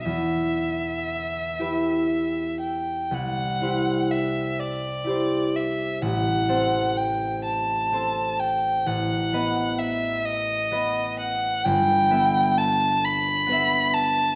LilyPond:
<<
  \new Staff \with { instrumentName = "Violin" } { \time 6/8 \key e \minor \tempo 4. = 42 e''2~ e''8 g''8 | fis''4 e''8 d''4 e''8 | fis''4 g''8 a''4 g''8 | fis''4 e''8 dis''4 fis''8 |
g''4 a''8 b''4 a''8 | }
  \new Staff \with { instrumentName = "Harp" } { \time 6/8 \key e \minor <e, b'>4. <e' g' b'>4. | c,8 <e' g' c''>4. <e' g' c''>4 | a,,8 <c' a' c''>4. <c' a' c''>4 | a,,8 <b b' dis''>4. <b b' dis''>4 |
g,,8 <b b' e''>4. <b b' e''>4 | }
>>